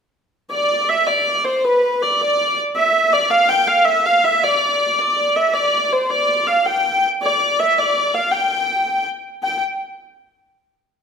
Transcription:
0.51 D5
0.89 E5
1.07 D5
1.45 C5
1.65 B4
2.02 D5
2.21 D5
2.76 E5
3.13 D5
3.30 F5
3.49 G5
3.67 F5
3.85 E5
4.06 F5
4.24 E5
4.43 D5
4.99 D5
5.36 E5
5.54 D5
5.93 C5
6.10 D5
6.47 F5
6.66 G5
7.23 D5
7.60 E5
7.79 D5
8.14 F5
8.32 G5
9.43 G5

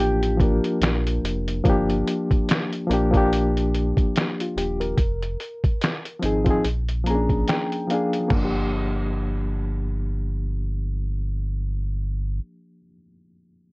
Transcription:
Already playing: A1 F3 A#3 D4 F4 G4
0.00 G4
0.23 closed hi-hat
0.37 F3 A#3 D4, kick, closed hi-hat
0.43 A#4
0.64 closed hi-hat
0.81 A#1, finger snap, snare, closed hi-hat
1.07 closed hi-hat
1.23 F1, closed hi-hat
1.48 closed hi-hat
1.64 G1 F3 A#3, kick, closed hi-hat
1.68 D4 G4
1.90 closed hi-hat
2.07 closed hi-hat
2.31 kick, closed hi-hat
2.49 finger snap, snare, closed hi-hat
2.73 closed hi-hat
2.87 A#1 F3 A#3, closed hi-hat
2.92 D4 G4
3.11 F3 A#3 D4, kick, closed hi-hat
3.17 G4
3.32 closed hi-hat
3.57 closed hi-hat
3.74 closed hi-hat
3.97 kick, closed hi-hat
4.16 finger snap, snare, closed hi-hat
4.40 F4, closed hi-hat
4.56 D#1 G4, closed hi-hat
4.80 A#4, closed hi-hat
4.98 F1, kick, closed hi-hat
5.23 closed hi-hat
5.40 closed hi-hat
5.64 kick, closed hi-hat
5.81 finger snap, snare, closed hi-hat
6.05 closed hi-hat
6.20 G#1 F3 C4, closed hi-hat
6.24 D#4 G#4
6.45 F3 C4 D#4, kick, closed hi-hat
6.51 G#4
6.65 A#1, closed hi-hat
6.89 closed hi-hat
7.04 F3 A#3 A#5, closed hi-hat
7.08 C#4 G#4
7.15 D4
7.30 kick, closed hi-hat
7.48 G5, finger snap, snare, closed hi-hat
7.72 closed hi-hat
7.88 F3 A#3 F5, closed hi-hat
7.92 D4 G#4
8.13 closed hi-hat
8.20 F3
8.28 G1 A#3, kick, floor tom, crash
8.36 D4
8.45 G4

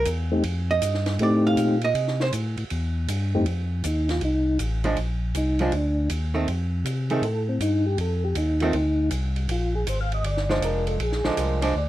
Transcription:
0.05 E2, hi-hat pedal, ride
0.32 A3 C4 D#4 G4
0.43 F2, ride
0.71 D#5
0.82 G2, hi-hat pedal, ride
0.94 snare
1.06 snare, ride
1.19 A2 A3 C4 D#4 G4, ride
1.23 D5
1.47 F5
1.57 A#2, hi-hat pedal, ride
1.81 D#5, ride
1.94 C3, ride
2.08 snare
2.20 C5, snare
2.32 A2, hi-hat pedal, ride
2.57 A2, ride
2.70 E2, ride
3.08 G2, hi-hat pedal, ride
3.34 F2 A3 C4 D#4 G4
3.46 F2, ride
3.84 D#2 D#4, hi-hat pedal, ride
4.09 F4, snare, ride
4.21 C2 D#4, ride
4.59 A1, hi-hat pedal, ride
4.84 F3 G#3 D4, ride
4.97 A#1, ride
5.35 C2 D#4, hi-hat pedal, ride
5.59 F3 G#3 D4 F4, ride
5.72 D2 D4, ride
6.09 D#2, hi-hat pedal, ride
6.34 D#3 A3 C4
6.48 F2, ride
6.85 C3, hi-hat pedal, ride
7.10 D#3 A3 C4 G#4, ride
7.22 A2 A4, ride
7.49 C4
7.60 G2 D#4, hi-hat pedal, ride
7.86 G4
7.97 F2 A4, ride
8.25 G4
8.35 D#2 D#4, hi-hat pedal, ride
8.60 D#3 A3 C4 F4, ride
8.73 D2 D#4, ride
9.11 C2, hi-hat pedal, ride
9.36 ride
9.48 A#1 F4, ride
9.75 G#4
9.86 G#1 C5, hi-hat pedal, ride
10.01 F5
10.12 D#5, ride
10.23 G1 D5, ride
10.37 snare
10.49 F3 G#3 D4 C5, snare
10.62 F1 A#4, hi-hat pedal, ride
10.87 A4, ride
10.99 A#1 G#4, ride
11.12 snare
11.24 A#1 F3 G#3 D4 A4, snare
11.37 C2 A#4, hi-hat pedal, ride
11.62 F3 G#3 D4 C5, ride
11.75 D2 D5

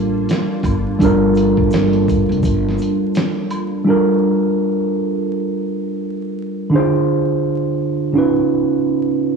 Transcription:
Already playing: A1 G3 A#3 D4 F4 A4 A#4
0.29 snare, closed hi-hat, shaker
0.63 G1, kick, closed hi-hat, high woodblock, shaker
0.99 G1 G3 D4 F4, kick, closed hi-hat, shaker
1.03 A4 A#4
1.35 closed hi-hat, shaker
1.57 G1, kick
1.71 snare, closed hi-hat, shaker
1.93 closed hi-hat
2.08 kick, closed hi-hat, shaker
2.29 F1, closed hi-hat
2.43 G1, kick, closed hi-hat, shaker
2.69 snare
2.78 closed hi-hat, shaker
3.15 snare, closed hi-hat, shaker
3.50 closed hi-hat, high woodblock, shaker
3.85 G3 D4 F4
3.89 A4 A#4
6.70 D3 D4 D#4
6.74 G#4 C5
6.79 F4
8.13 C#3 C#4 D#4
8.17 F4 B4

